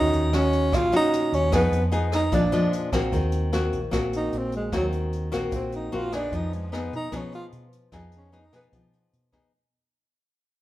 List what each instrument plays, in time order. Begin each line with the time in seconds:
Already playing: fingered electric bass D#2, nylon-string guitar D#3 G#3 C#4 F#4, tenor saxophone D#4
0.13 fingered electric bass D#2, closed hi-hat
0.33 nylon-string guitar G#3 C#4 F#4, tenor saxophone C#4, cross-stick, closed hi-hat
0.53 closed hi-hat
0.72 fingered electric bass A#1, nylon-string guitar A#2, tenor saxophone F4, kick, cross-stick, closed hi-hat
0.92 nylon-string guitar G#3 C#4 F#4, tenor saxophone D#4, closed hi-hat
1.13 closed hi-hat
1.33 fingered electric bass D#2, tenor saxophone C#4, closed hi-hat
1.52 fingered electric bass F2, nylon-string guitar F3 B3 D#4 G#4, tenor saxophone B3, kick, cross-stick, closed hi-hat
1.72 fingered electric bass F2, closed hi-hat
1.92 nylon-string guitar B3 D#4 G#4, closed hi-hat
2.12 tenor saxophone D#4, cross-stick, closed hi-hat
2.32 fingered electric bass A#1, nylon-string guitar A#2 F3 G#3 D4, tenor saxophone D4, kick, closed hi-hat
2.52 nylon-string guitar F3 G#3 D4, closed hi-hat
2.73 closed hi-hat
2.92 fingered electric bass A#1, nylon-string guitar A#3 C4 F#4, kick, cross-stick, closed hi-hat
3.12 fingered electric bass D#2, nylon-string guitar D#3, kick, closed hi-hat
3.32 closed hi-hat
3.53 nylon-string guitar A#3 C4 F#4, cross-stick, closed hi-hat
3.73 fingered electric bass A#1, closed hi-hat
3.91 fingered electric bass A#1, nylon-string guitar A#2 A#3 C4 F#4, kick, cross-stick, closed hi-hat
4.13 tenor saxophone D#4, closed hi-hat
4.32 fingered electric bass A#1, closed hi-hat
4.38 tenor saxophone C4
4.52 closed hi-hat
4.56 tenor saxophone G#3
4.72 fingered electric bass D#2, nylon-string guitar D#3 A#3 C4 F#4, kick, cross-stick, closed hi-hat
4.76 tenor saxophone F#3
4.92 closed hi-hat
5.13 closed hi-hat
5.32 fingered electric bass A#1, nylon-string guitar A#3 C4 F#4, cross-stick, closed hi-hat
5.51 fingered electric bass A#1, nylon-string guitar A#2, tenor saxophone C4, kick, closed hi-hat
5.72 tenor saxophone D#4, closed hi-hat
5.92 fingered electric bass A#1, nylon-string guitar A#3 C4 F#4, tenor saxophone F4, closed hi-hat
6.12 nylon-string guitar B3 D#4 G#4, tenor saxophone D4, cross-stick, closed hi-hat
6.32 fingered electric bass F2, nylon-string guitar F3, tenor saxophone D#4, kick, closed hi-hat
6.53 tenor saxophone G#3, closed hi-hat
6.72 nylon-string guitar B3 D#4 G#4, cross-stick, closed hi-hat
6.77 tenor saxophone B3
6.93 fingered electric bass B2, tenor saxophone D#4, closed hi-hat
7.12 fingered electric bass B2, nylon-string guitar F3 B3 D#4 G#4, kick, cross-stick, closed hi-hat
7.17 tenor saxophone C#4
7.33 tenor saxophone F4, closed hi-hat
7.52 fingered electric bass B2, closed hi-hat
7.73 closed hi-hat
7.92 fingered electric bass F2, nylon-string guitar F3 B3 D#4 G#4, kick, cross-stick, closed hi-hat
8.12 closed hi-hat
8.17 tenor saxophone C#4
8.32 nylon-string guitar B3 D#4 G#4, closed hi-hat
8.39 tenor saxophone D#4
8.52 fingered electric bass B2, nylon-string guitar B3 D#4 G#4, tenor saxophone B3, cross-stick, closed hi-hat
8.72 fingered electric bass B2, nylon-string guitar F3, kick, closed hi-hat
8.93 closed hi-hat
9.13 fingered electric bass B2, closed hi-hat
9.32 nylon-string guitar B3 D#4 G#4, kick, cross-stick, closed hi-hat